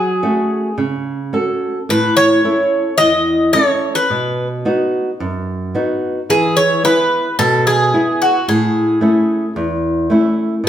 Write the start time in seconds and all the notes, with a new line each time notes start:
Already playing: F#3 G#4
0.23 A3 C#4 F#4
0.78 C#3
1.33 C#4 F#4 A4
1.89 A2 B4
2.17 C#5
2.44 C#4 E4 A4
2.98 E2 D#5
3.53 C#4 E4 A4 C#5
3.95 B4
4.10 B2
4.65 B3 D#4 F#4
5.20 F#2
5.75 B3 D#4 F#4
6.30 E3 G#4
6.57 C#5
6.84 B3 E4 G#4 B4
7.39 B2 A4
7.67 G#4
7.93 B3 E4 G#4
8.22 F#4
8.48 A2 G#4
9.01 A3 C#4 E4
9.56 E2
10.10 A3 C#4 E4
10.64 B2